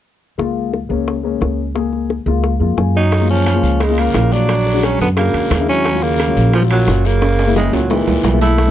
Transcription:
0.38 C#2 G#3 A#3 F4, high bongo
0.74 high bongo
0.89 C#2 G#3 A#3 C#4
1.08 high bongo
1.23 G#3 A#3 C#4
1.41 C#2, high bongo, low bongo
1.75 G#3 A#3 G#4, high bongo
1.93 high bongo
2.10 high bongo
2.26 C#2 G#3 A#3 F4, high bongo
2.44 high bongo
2.60 F2 G#3 A#3 F4
2.77 F#2 G#5, high bongo, low bongo
2.95 F#3 D#4, high bongo
3.12 high bongo, high timbale, long guiro
3.20 G#3 A#3 F4
3.30 F3 C#4
3.46 high bongo, high timbale, short guiro
3.54 G#3 A#3 F4
3.63 C#2, short guiro
3.80 C#3 G#3, high bongo, high timbale, long guiro
3.88 G#3 A#3 F4
3.98 C#3 A#3, high timbale
4.14 A#1 G#3 A#3 F4, high bongo, low bongo, high timbale, low timbale, short guiro
4.32 F#3 D4, short guiro
4.49 high bongo, high timbale, long guiro
4.66 high bongo
4.73 G#3 D4 F#4
4.83 F#3 C#4, high bongo, high timbale, short guiro
5.00 F#2 D3 B3, high bongo, short guiro
5.16 C#3 G#3 A#3 D4 F#4, high bongo, high timbale, long guiro
5.33 E2, high timbale
5.50 D#2, high bongo, low bongo, high timbale, low timbale, short guiro
5.59 G#3 D4 E4
5.69 F#3 C#4, high bongo, short guiro
5.85 high bongo, high timbale, long guiro
5.93 F#3 C#4 F4
6.03 C#3 A#3
6.20 high bongo, high timbale, short guiro
6.28 F#3 C#4 F4
6.36 A#1, short guiro
6.53 A#2 F3, high bongo, high timbale, long guiro
6.61 F#3 C#4 F4
6.71 A#2 F#3, high timbale
6.87 F#1 F#3 C#4 F4, high bongo, low bongo, high timbale, short guiro
7.05 C#3 A#3, short guiro
7.22 high bongo, high timbale, long guiro
7.39 high bongo, high timbale
7.46 G#3 A#3 E4
7.56 C#3 G#3, high bongo, low timbale, short guiro
7.72 C#2 A#2 F#3, high bongo, high timbale, short guiro
7.89 A#2 E3 G#3 A#3 D#4, high bongo, low timbale, long guiro
8.07 C#2, low timbale
8.24 B1, high bongo, low bongo, low timbale, short guiro
8.32 G#3 A#3 E4
8.41 A3 E4, high bongo, low timbale, short guiro
8.58 high bongo, high timbale, long guiro
8.66 A3 C#4

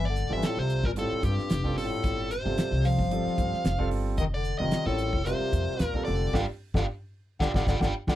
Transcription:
Already playing: G1
0.05 D5
0.10 D3
0.16 snare, closed hi-hat
0.29 G1 G3 C4 F4 A4 E5
0.36 E3
0.42 A4, snare, closed hi-hat
0.47 A2
0.57 C2 C3 C5
0.70 closed hi-hat
0.83 G1 A#2 A#4, kick
0.96 A2 G3 C4 F4 A4, closed hi-hat
1.11 muted upright bass stroke
1.23 G2 G4, kick, snare, closed hi-hat
1.37 muted upright bass stroke, snare
1.50 F1, snare, closed hi-hat
1.64 G3 C4 F4 A4, kick
1.78 G1 A2 A4, open hi-hat
2.04 G1, kick, closed hi-hat
2.31 C3 C5, closed hi-hat
2.45 G1 G3 C4 F4 A4
2.58 snare, closed hi-hat
2.72 C2, snare
2.84 F3 F5, open hi-hat
2.98 G1, kick
3.11 G3 C4 F4 A4, closed hi-hat
3.26 muted upright bass stroke, snare
3.38 G2, kick, closed hi-hat
3.53 muted upright bass stroke, snare
3.64 F1, snare, closed hi-hat
3.78 G3 C4 F4 A4, kick
3.91 G1, open hi-hat
4.17 F1 D#3 D#5, kick, closed hi-hat
4.34 D3 D5
4.45 closed hi-hat
4.59 F1 D#3 G3 C4 F4 A#4 D#5
4.71 snare, closed hi-hat
4.86 A1 A2 A4, snare
4.98 closed hi-hat
5.13 F1, kick
5.24 C3 G3 C4 F4 A#4 C5, closed hi-hat
5.40 muted upright bass stroke
5.53 F2, kick, closed hi-hat
5.68 muted upright bass stroke
5.79 D#2 A#2, snare, closed hi-hat
5.86 A#4
5.94 G3 C4 F4 A4, kick
6.05 F1 D3 D5, open hi-hat
6.33 G1 D3 D4 F4 G4 D5 F5 G5, kick, snare
6.74 G1 D3 D4 F4 G4 D5 F5 G5, kick, snare
7.40 G1 D3 D4 F4 G4 D5 F5 G5, kick, snare
7.54 G1 D3 D4 F4 G4 D5 F5 G5, kick, snare
7.67 G1 D3 D4 F4 G4 D5 F5 G5, kick, snare
7.80 G1 D3 D4 F4 G4, kick, snare
7.85 D5 F5 G5
8.07 G1 D3 D4 F4 G4 D5 F5 G5, kick, snare

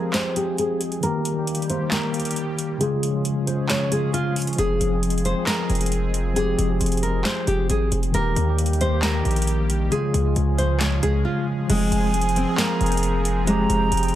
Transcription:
Already playing: F3 G#3 C4 G4 G#4 A#4
0.14 C5, snare, clap, closed hi-hat
0.34 F3 C4 G4, closed hi-hat
0.39 G#4
0.58 G#4, closed hi-hat
0.81 closed hi-hat
0.92 closed hi-hat
1.00 D#3 G3 A#3 G4 A#4, closed hi-hat
1.05 G4
1.25 closed hi-hat
1.34 D#3 A#3
1.39 G4
1.47 closed hi-hat
1.55 closed hi-hat
1.62 closed hi-hat
1.70 C5, closed hi-hat
1.78 D#3 A#3
1.83 G4
1.91 A#4, snare, clap, closed hi-hat
2.11 D#3 A#3, closed hi-hat
2.16 G4, closed hi-hat
2.25 closed hi-hat
2.31 closed hi-hat
2.36 closed hi-hat
2.59 closed hi-hat
2.78 C#3 F3 G#3 C#4 G#4, closed hi-hat
2.83 F4
3.03 closed hi-hat
3.11 C#3 G#3
3.16 F4
3.25 closed hi-hat
3.47 C5, closed hi-hat
3.69 C#5, snare, clap, closed hi-hat
3.89 C#3 G#3 G#4, closed hi-hat
3.94 F4
4.14 F4, closed hi-hat
4.36 closed hi-hat, open hi-hat
4.42 closed hi-hat
4.47 closed hi-hat
4.53 F3, closed hi-hat
4.58 F1 C4 G#4, closed hi-hat
4.81 F1, closed hi-hat
4.89 F3 C4
4.94 G#4
5.03 closed hi-hat
5.10 closed hi-hat
5.18 closed hi-hat
5.25 C5, closed hi-hat
5.34 F3 C4
5.39 G#4
5.47 A#4, snare, clap, closed hi-hat
5.67 F1 F3 C4, closed hi-hat
5.72 G#4, closed hi-hat
5.81 closed hi-hat
5.86 closed hi-hat
5.92 closed hi-hat
6.14 closed hi-hat
6.34 F3 C4 G#4, closed hi-hat
6.39 G4
6.58 F1, closed hi-hat
6.67 F3 C4
6.72 G#4
6.81 F1, closed hi-hat
6.86 closed hi-hat
6.92 closed hi-hat
6.97 closed hi-hat
7.03 A#4, closed hi-hat
7.25 C5, snare, clap, closed hi-hat
7.45 F1 F3 C4 G4, closed hi-hat
7.50 G#4
7.70 G#1 G#4, closed hi-hat
7.92 F1, closed hi-hat
8.03 closed hi-hat
8.12 D#1 D#3 G3 A#3 G4 A#4, closed hi-hat
8.17 G4
8.36 D#2, closed hi-hat
8.45 D#3 A#3
8.50 G4
8.58 closed hi-hat
8.66 closed hi-hat
8.73 closed hi-hat
8.81 C5, closed hi-hat
8.89 D#3 A#3
8.94 G4
9.02 A#4, snare, clap, closed hi-hat
9.22 A#1 D#3 A#3, closed hi-hat
9.28 G4, closed hi-hat
9.36 closed hi-hat
9.42 closed hi-hat
9.47 closed hi-hat
9.70 closed hi-hat
9.89 C#3 F3 G#3 C#4 G#4, closed hi-hat
9.94 F4
10.14 C#2, closed hi-hat
10.22 C#3 G#3
10.28 F4
10.36 C#2, closed hi-hat
10.58 C5, closed hi-hat
10.80 C#5, snare, clap, closed hi-hat
11.00 C#2 C#3 G#3 G#4, closed hi-hat
11.06 F4
11.25 F4
11.67 F1 F3 G#3 C4 G#4, closed hi-hat, crash
11.72 G#4
11.92 F1 G#5, closed hi-hat
12.00 F3 C4
12.06 G#4
12.14 closed hi-hat
12.21 closed hi-hat
12.29 closed hi-hat
12.36 C4, closed hi-hat
12.45 F3 C4
12.50 G#4
12.58 A#3 A#5, snare, clap, closed hi-hat
12.78 F1 F3 C4, closed hi-hat
12.83 G#4, closed hi-hat
12.92 closed hi-hat
12.97 closed hi-hat
13.03 closed hi-hat
13.25 G#5, closed hi-hat
13.45 F3 G#3 C4 G5 A#5, closed hi-hat
13.50 G4
13.70 F1, closed hi-hat
13.78 F3 C4
13.83 G#4
13.92 F1, closed hi-hat
13.97 closed hi-hat
14.03 closed hi-hat
14.08 closed hi-hat

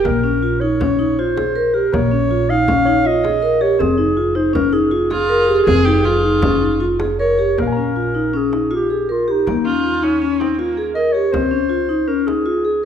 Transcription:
0.04 A#1 A#3 A#4, frame drum
0.24 C#4
0.43 F4
0.60 D#4 C#5
0.80 C#4, frame drum
0.99 D#4
1.19 F4 C5
1.37 G#4, frame drum
1.56 A#4
1.74 G4 A#4, frame drum
1.93 A#1 A#3 C#5, frame drum
2.11 C#4
2.31 F4
2.50 D#4 F5
2.68 C#4, frame drum
2.85 D#4 C#5
3.05 F4 D#5
3.24 G#4, frame drum
3.42 A#4
3.61 G4 C#5, frame drum
3.79 F1 C4 G#4, frame drum
3.98 D#4
4.17 F4
4.35 D#4 C5
4.53 C#4 A#4, frame drum
4.73 D#4 G#4
4.91 F4
5.10 F4 G#4, frame drum
5.29 A#4
5.48 G4, frame drum
5.66 F1 C4 G#4, frame drum
5.85 D#4 G4
6.04 F4, frame drum
6.23 D#4
6.42 C#4, frame drum
6.61 D#4
6.80 F4
6.99 G#4, frame drum
7.19 A#4 C#5
7.39 G4
7.58 A#1 A#3 A#4, frame drum
7.62 F5
7.67 G#5
7.72 A#5
7.77 C#4
7.96 F4
8.15 D#4
8.34 C#4 G#4
8.52 D#4, frame drum
8.71 F4
8.75 G4
8.90 G#4
9.09 F4 A#4, frame drum
9.28 D#4 G4
9.47 D#2 A#3, frame drum
9.65 C#4 F4
9.84 F4
10.03 C#4 D#4
10.22 C#4
10.40 C4 D#4, frame drum
10.53 C4
10.58 A#3 F4
10.77 G#4
10.95 A#4 D#5, frame drum
11.13 G4 C#5
11.32 C#2 C4 C5, frame drum
11.51 C#4
11.70 F4
11.89 D#4
12.08 C#4 A#4
12.27 D#4 G#4, frame drum
12.46 F4
12.65 G#4

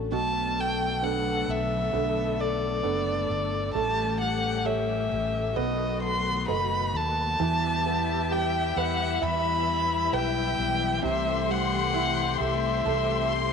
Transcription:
Already playing: D3 A3 C#4 D4 F#4
0.12 B1 B2 D3 F#3 A3 B3 A4 A5
0.57 A3 G5
1.02 B3 D4 A4 F#5
1.48 B1 A4 E5
1.93 B1 A3 B3 D4 A4
2.40 A4 D5
2.83 F#1 B3 D4 A4
3.29 G1 A3
3.75 A1 A2 E3 G3 A3 C#4 G4 A5
4.21 A3 F#5
4.65 C#4 G4 A4 C#5 E5
5.12 A1 A4
5.56 B1 B2 D#3 F#3 B3 F#4 D#5
6.02 A4 C6
6.48 F#1 D#4 A4 B4 D#5 B5
6.94 D#2 A3 A5
7.39 E2 E3 G3 B3 G4 E5
7.62 B3
7.84 B3 E4
8.30 G3 G4 G5
8.54 E4
8.76 E2 B3 B4 F#5
9.00 E4
9.21 E2 E3 E4 E5 B5
9.45 B3
9.69 E4
10.12 B1 G3 B4 G5
10.36 E4
10.58 B1 B3
10.82 E4
11.03 C2 C3 A3 C4 G4 E5 C6
11.28 A3
11.48 G3 E4 F#5
11.73 G4
11.94 E3 E4
12.17 E4
12.40 C2 A3 G4 E5
12.63 E4
12.85 C2 C3 A4 C6
13.10 A3
13.32 E4 C6

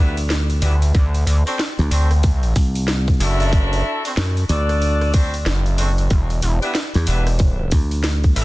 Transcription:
Already playing: D2 B3 D4 E4 G4 B4
0.17 open hi-hat
0.30 snare, open hi-hat
0.50 open hi-hat
0.62 D2 B3 D4 E4 G4 B4, open hi-hat
0.82 open hi-hat
0.95 D2, kick, open hi-hat
1.15 open hi-hat
1.27 D2, open hi-hat
1.47 C4 D4 F#4 A4 C5, open hi-hat
1.59 snare, open hi-hat
1.79 D2, open hi-hat
1.91 D2 C4 D4 F#4 A4 C5, open hi-hat
2.11 cross-stick, open hi-hat
2.23 kick, open hi-hat
2.43 open hi-hat
2.56 C2, kick, open hi-hat
2.75 open hi-hat
2.88 snare, open hi-hat
3.08 kick, open hi-hat
3.10 open hi-hat
3.11 open hi-hat
3.14 open hi-hat
3.17 open hi-hat
3.19 F#1, open hi-hat
3.20 D4 E4 F#4 A4 E5, open hi-hat
3.40 open hi-hat
3.42 open hi-hat
3.49 open hi-hat
3.53 kick, open hi-hat
3.59 open hi-hat
3.64 open hi-hat
3.73 open hi-hat
4.05 C4 D4 F#4 A4 C5, open hi-hat
4.17 F#2, snare, open hi-hat
4.37 open hi-hat
4.49 D2 D4 F#4 A4 D5, open hi-hat
4.69 cross-stick, open hi-hat
4.82 open hi-hat
5.01 cross-stick, open hi-hat
5.14 C4 D4 F#4 A4 C5, kick, open hi-hat
5.34 open hi-hat
5.46 F#1, snare, open hi-hat
5.66 open hi-hat
5.78 C4 D4 F#4 A4 C5, open hi-hat
5.98 open hi-hat
6.10 E1, kick, open hi-hat
6.30 open hi-hat
6.42 E1, open hi-hat
6.62 B3 D4 E4 G4 B4, open hi-hat
6.75 snare, open hi-hat
6.94 E2, open hi-hat
7.07 E1 B3 D4 E4 G4 B4, open hi-hat
7.27 cross-stick, open hi-hat
7.39 kick, open hi-hat
7.71 D2, kick, open hi-hat
7.91 open hi-hat
8.04 snare, open hi-hat
8.24 kick, open hi-hat
8.36 A1 D4 E4 G4 E5, open hi-hat

